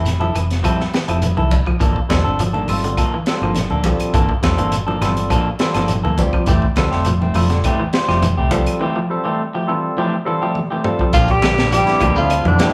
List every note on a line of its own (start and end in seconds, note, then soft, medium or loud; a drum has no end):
0.00 0.31 F1 medium
0.00 0.13 E3 medium
0.05 snare soft
0.05 closed hi-hat medium
0.05 high conga soft
0.05 shekere medium
0.20 0.32 F3 medium
0.20 0.38 E4 soft
0.20 0.38 A4 medium
0.20 muted clean electric guitar stroke soft
0.20 high conga medium
0.35 0.61 F1 medium
0.35 0.57 E3 medium
0.35 closed hi-hat soft
0.35 claves medium
0.35 shekere soft
0.50 snare soft
0.50 closed hi-hat soft
0.63 0.86 F3 medium
0.63 0.82 G3 medium
0.63 0.82 C4 medium
0.63 0.82 E4 medium
0.63 0.82 A4 medium
0.63 kick medium
0.63 closed hi-hat medium
0.63 high conga soft
0.63 claves medium
0.63 shekere medium
0.80 snare soft
0.93 1.05 E3 medium
0.93 snare medium
0.93 closed hi-hat soft
0.93 shekere soft
1.08 1.35 F1 medium
1.08 1.30 F3 medium
1.08 1.26 C4 soft
1.08 1.26 E4 soft
1.08 1.25 A4 soft
1.08 closed hi-hat soft
1.08 claves medium
1.22 closed hi-hat medium
1.22 high conga medium
1.22 shekere medium
1.37 1.64 C2 medium
1.37 1.59 E3 medium
1.37 1.55 E4 soft
1.37 1.55 A4 medium
1.37 muted clean electric guitar stroke soft
1.37 high conga medium
1.51 kick medium
1.51 closed hi-hat soft
1.51 high conga medium
1.51 shekere soft
1.66 1.77 F3 medium
1.66 muted fingered electric bass stroke soft
1.66 kick medium
1.66 claves medium
1.80 1.94 G1 medium
1.80 2.02 E3 medium
1.80 1.98 F3 medium
1.80 1.99 A#3 medium
1.80 1.99 D4 medium
1.80 1.99 A4 medium
1.80 kick medium
1.80 closed hi-hat medium
1.80 high conga soft
1.80 shekere medium
1.96 kick medium
2.09 2.24 E2 medium
2.09 2.32 D3 medium
2.09 2.41 G3 medium
2.09 2.41 C4 medium
2.09 2.41 F4 medium
2.09 2.41 A4 medium
2.09 kick medium
2.09 snare medium
2.09 closed hi-hat soft
2.09 high conga medium
2.09 claves medium
2.09 shekere soft
2.24 2.64 G1 medium
2.24 2.42 D4 soft
2.24 2.42 A4 medium
2.24 muted clean electric guitar stroke soft
2.39 2.61 F3 medium
2.39 closed hi-hat medium
2.39 high conga soft
2.39 shekere medium
2.53 2.71 A#3 soft
2.53 2.71 D4 soft
2.53 2.71 A4 medium
2.53 high conga medium
2.68 2.95 G1 medium
2.68 3.00 G3 medium
2.68 3.00 C4 medium
2.68 3.00 F4 medium
2.68 3.00 A4 medium
2.68 open hi-hat medium
2.68 high conga medium
2.68 claves medium
2.68 shekere soft
2.84 3.06 D3 medium
2.84 closed hi-hat soft
2.97 3.15 F3 medium
2.97 3.15 A#3 medium
2.97 3.16 A4 medium
2.97 muted clean electric guitar stroke medium
2.97 kick medium
2.97 closed hi-hat medium
2.97 high conga soft
2.97 claves medium
2.97 shekere medium
3.14 3.35 E3 medium
3.26 3.58 G3 medium
3.26 3.58 C4 medium
3.26 3.59 F4 medium
3.26 3.59 A4 medium
3.26 snare medium
3.26 closed hi-hat soft
3.26 shekere soft
3.41 3.68 G1 medium
3.41 3.53 F3 medium
3.41 3.60 A#3 soft
3.41 3.59 D4 soft
3.41 claves medium
3.55 snare soft
3.55 closed hi-hat medium
3.55 high conga medium
3.55 shekere medium
3.70 3.97 D2 medium
3.70 3.88 A#3 soft
3.70 3.88 D4 soft
3.70 3.88 A4 soft
3.70 high conga medium
3.84 4.07 F3 medium
3.84 4.16 G3 medium
3.84 4.17 C4 medium
3.84 4.17 F4 medium
3.84 4.17 A4 medium
3.84 kick medium
3.84 closed hi-hat soft
3.84 high conga medium
3.84 shekere soft
4.00 muted fingered electric bass stroke soft
4.00 closed hi-hat soft
4.00 claves medium
4.13 4.28 G1 medium
4.13 4.26 E3 medium
4.13 4.32 A#3 medium
4.13 4.32 D4 medium
4.13 4.32 A4 medium
4.13 muted clean electric guitar stroke medium
4.13 kick medium
4.13 closed hi-hat medium
4.13 high conga soft
4.13 shekere medium
4.29 muted clean electric guitar stroke medium
4.29 kick medium
4.42 4.56 E2 medium
4.42 4.74 G3 medium
4.42 4.74 C4 medium
4.42 4.75 F4 medium
4.42 4.75 A4 loud
4.42 kick medium
4.42 snare medium
4.42 closed hi-hat medium
4.42 high conga medium
4.42 claves medium
4.42 shekere soft
4.57 4.97 G1 medium
4.57 4.80 E3 medium
4.57 4.76 A#3 soft
4.57 4.75 D4 soft
4.57 4.75 A4 medium
4.57 closed hi-hat medium
4.72 closed hi-hat medium
4.72 high conga soft
4.72 shekere medium
4.87 4.98 F3 medium
4.87 5.05 A#3 soft
4.87 5.04 D4 soft
4.87 5.04 A4 medium
4.87 high conga medium
5.01 5.28 G1 medium
5.01 5.24 E3 medium
5.01 5.33 G3 medium
5.01 5.33 C4 medium
5.01 5.33 F4 medium
5.01 5.34 A4 medium
5.01 snare soft
5.01 closed hi-hat medium
5.01 high conga medium
5.01 claves medium
5.01 shekere soft
5.17 closed hi-hat soft
5.30 5.48 F3 medium
5.30 5.52 F3 medium
5.30 5.49 A#3 medium
5.30 5.49 D4 medium
5.30 5.49 A4 medium
5.30 kick medium
5.30 closed hi-hat medium
5.30 high conga soft
5.30 claves medium
5.30 shekere medium
5.59 5.72 E3 medium
5.59 5.91 G3 medium
5.59 5.91 C4 medium
5.59 5.91 F4 medium
5.59 5.92 A4 medium
5.59 snare medium
5.59 closed hi-hat soft
5.59 shekere soft
5.74 6.01 G1 medium
5.74 5.98 F3 medium
5.74 5.93 A#3 soft
5.74 5.92 D4 soft
5.74 5.92 A4 medium
5.74 snare soft
5.74 closed hi-hat soft
5.74 claves medium
5.88 closed hi-hat medium
5.88 high conga medium
5.88 shekere medium
6.04 6.31 D2 medium
6.04 6.26 E3 medium
6.04 6.22 A#3 soft
6.04 6.21 A4 medium
6.04 high conga medium
6.18 6.48 G3 medium
6.18 6.48 C4 medium
6.18 6.48 F4 medium
6.18 6.48 G4 medium
6.18 kick medium
6.18 closed hi-hat soft
6.18 high conga medium
6.18 shekere soft
6.33 6.44 F3 medium
6.33 muted fingered electric bass stroke soft
6.33 kick medium
6.33 claves medium
6.46 6.61 F1 medium
6.46 6.65 E3 medium
6.46 6.69 E3 medium
6.46 6.65 A3 medium
6.46 6.66 C4 medium
6.46 6.66 G4 medium
6.46 kick medium
6.46 closed hi-hat medium
6.46 high conga soft
6.46 shekere medium
6.62 kick medium
6.76 6.90 D2 medium
6.76 6.99 D3 medium
6.76 7.08 G3 medium
6.76 7.08 C4 medium
6.76 7.08 F4 medium
6.76 7.09 A4 loud
6.76 kick medium
6.76 snare medium
6.76 closed hi-hat soft
6.76 high conga medium
6.76 claves medium
6.76 shekere soft
6.91 7.31 F1 medium
6.91 7.09 A3 soft
6.91 7.09 C4 soft
6.91 7.09 G4 medium
6.91 snare soft
7.05 7.28 F3 medium
7.05 closed hi-hat medium
7.05 high conga soft
7.05 shekere medium
7.21 7.39 A3 soft
7.21 7.39 C4 soft
7.21 muted clean electric guitar stroke medium
7.21 high conga medium
7.34 7.61 F1 medium
7.34 7.47 F3 medium
7.34 7.66 G3 medium
7.34 7.66 C4 medium
7.34 7.67 F4 medium
7.34 7.67 A4 medium
7.34 open hi-hat medium
7.34 high conga medium
7.34 claves medium
7.34 shekere soft
7.50 7.72 D3 medium
7.50 snare soft
7.50 closed hi-hat soft
7.64 7.82 E3 medium
7.64 7.83 A3 medium
7.64 7.83 C4 medium
7.64 7.83 G4 medium
7.64 kick medium
7.64 closed hi-hat medium
7.64 high conga soft
7.64 claves medium
7.64 shekere medium
7.80 8.01 E3 medium
7.93 8.25 G3 medium
7.93 8.25 C4 medium
7.93 8.25 F4 medium
7.93 8.25 C5 medium
7.93 snare medium
7.93 closed hi-hat soft
7.93 shekere soft
8.08 8.35 F1 medium
8.08 8.19 F3 medium
8.08 8.26 A3 soft
8.08 8.26 C4 medium
8.08 8.26 G4 medium
8.08 snare soft
8.08 claves medium
8.22 8.44 E3 medium
8.22 closed hi-hat medium
8.22 high conga medium
8.22 shekere medium
8.37 8.64 C2 medium
8.37 8.55 A3 soft
8.37 8.55 C4 medium
8.37 8.55 G4 medium
8.51 8.73 F3 medium
8.51 8.83 G3 medium
8.51 8.83 C4 medium
8.51 8.83 F4 medium
8.51 8.83 A4 medium
8.51 kick medium
8.51 closed hi-hat medium
8.51 high conga medium
8.51 shekere soft
8.66 muted fingered electric bass stroke soft
8.66 closed hi-hat medium
8.66 claves medium
8.81 8.98 E3 medium
8.81 8.92 E3 loud
8.81 8.99 A3 medium
8.81 8.99 C4 medium
8.81 8.99 G4 medium
8.96 9.17 F3 medium
9.10 9.41 G3 medium
9.10 9.41 C4 medium
9.10 9.41 F4 medium
9.10 9.42 A4 loud
9.24 9.47 E3 medium
9.24 9.42 A3 soft
9.24 9.42 C4 soft
9.24 9.42 G4 medium
9.54 9.65 F3 medium
9.54 9.72 A3 soft
9.54 9.71 G4 medium
9.54 muted clean electric guitar stroke soft
9.67 9.90 E3 medium
9.67 9.99 G3 medium
9.67 9.99 C4 medium
9.67 9.99 F4 medium
9.67 9.99 A4 medium
9.97 10.15 E3 medium
9.97 10.19 F3 medium
9.97 10.15 A3 medium
9.97 10.15 C4 medium
9.97 10.16 G4 medium
10.25 10.38 E3 medium
10.25 10.57 G3 medium
10.25 10.57 C4 medium
10.25 10.57 F4 medium
10.25 10.58 A4 loud
10.42 10.64 F3 medium
10.42 10.59 A3 soft
10.42 10.59 C4 soft
10.42 10.59 G4 medium
10.55 high tom soft
10.71 10.93 E3 medium
10.71 10.88 A3 soft
10.71 10.88 C4 medium
10.71 10.88 G4 medium
10.84 11.13 G3 medium
10.84 11.14 C4 medium
10.84 11.14 F4 medium
10.84 11.14 A4 loud
10.84 mid tom medium
10.99 11.11 F3 medium
10.99 kick medium
11.13 11.83 A#1 loud
11.13 11.28 F2 medium
11.13 11.32 F3 medium
11.13 11.36 F3 loud
11.13 11.32 A#3 medium
11.13 11.32 D4 medium
11.13 11.32 F4 loud
11.13 11.33 G4 medium
11.13 muted clean electric guitar stroke medium
11.13 kick medium
11.13 snare soft
11.13 closed hi-hat medium
11.13 high conga soft
11.13 shekere medium
11.28 11.72 G2 medium
11.28 11.73 G3 medium
11.28 11.72 G4 loud
11.28 kick medium
11.28 closed hi-hat soft
11.42 11.65 D3 medium
11.42 snare medium
11.42 closed hi-hat soft
11.42 high conga loud
11.42 claves medium
11.42 shekere medium
11.58 11.76 A#3 soft
11.58 11.76 D4 soft
11.58 11.75 G4 soft
11.58 snare medium
11.58 closed hi-hat soft
11.58 shekere soft
11.71 12.14 G2 medium
11.71 11.94 F3 medium
11.71 12.14 G3 medium
11.71 12.13 G4 loud
11.71 snare soft
11.71 closed hi-hat medium
11.71 high conga soft
11.71 shekere medium
11.85 12.01 D3 medium
11.85 12.01 G3 medium
11.85 12.02 C4 medium
11.85 12.02 E4 medium
11.85 snare soft
11.85 closed hi-hat soft
12.00 12.41 D2 loud
12.00 12.12 F3 medium
12.00 12.19 A#3 medium
12.00 12.19 D4 medium
12.00 12.20 G4 medium
12.00 muted clean electric guitar stroke medium
12.00 kick medium
12.00 closed hi-hat soft
12.00 low conga medium
12.00 claves medium
12.00 shekere soft
12.15 12.43 F2 medium
12.15 12.31 D3 medium
12.15 12.38 D3 medium
12.15 12.44 F3 medium
12.15 12.31 G3 medium
12.15 12.31 C4 medium
12.15 12.31 E4 medium
12.15 12.44 F4 medium
12.15 shekere medium
12.30 closed hi-hat medium
12.30 high conga soft
12.30 claves medium
12.45 12.73 D2 medium
12.45 12.58 F2 medium
12.45 12.53 D3 medium
12.45 12.73 D3 medium
12.45 12.67 E3 medium
12.45 12.53 G3 medium
12.45 12.53 C4 medium
12.45 12.73 D4 medium
12.45 12.53 E4 medium
12.45 high conga medium
12.45 low conga medium
12.59 12.73 D3 medium
12.59 12.73 F3 medium
12.59 12.73 G3 medium
12.59 12.73 A#3 medium
12.59 12.73 C4 medium
12.59 12.73 D4 medium
12.59 12.73 E4 medium
12.59 12.73 G4 medium
12.59 snare medium
12.59 closed hi-hat soft
12.59 high conga medium
12.59 shekere medium